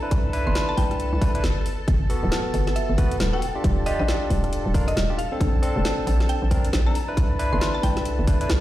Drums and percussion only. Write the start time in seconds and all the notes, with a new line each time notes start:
0.11 kick, closed hi-hat
0.33 open hi-hat
0.55 snare, closed hi-hat
0.77 kick, open hi-hat
0.91 cross-stick, closed hi-hat
1.00 closed hi-hat
1.22 kick, open hi-hat
1.35 closed hi-hat
1.44 snare, closed hi-hat
1.66 open hi-hat
1.88 kick, closed hi-hat
2.10 open hi-hat
2.32 snare, closed hi-hat
2.54 open hi-hat
2.67 cross-stick, snare, closed hi-hat
2.76 closed hi-hat
2.98 kick, open hi-hat
3.11 closed hi-hat
3.20 snare, closed hi-hat
3.42 open hi-hat
3.64 kick, closed hi-hat
3.86 open hi-hat
4.08 snare, closed hi-hat
4.30 kick, open hi-hat
4.44 cross-stick, closed hi-hat
4.53 closed hi-hat
4.74 kick, open hi-hat
4.88 closed hi-hat
4.97 snare, closed hi-hat
5.19 open hi-hat
5.41 kick, closed hi-hat
5.63 open hi-hat
5.85 snare, closed hi-hat
6.07 open hi-hat
6.20 cross-stick, snare, closed hi-hat
6.29 closed hi-hat
6.51 kick, open hi-hat
6.65 closed hi-hat
6.73 snare, closed hi-hat
6.95 open hi-hat
7.17 kick, closed hi-hat
7.39 open hi-hat
7.61 snare, closed hi-hat
7.83 kick, open hi-hat
7.97 cross-stick, snare, closed hi-hat
8.05 closed hi-hat
8.27 kick, open hi-hat
8.41 closed hi-hat
8.50 snare, closed hi-hat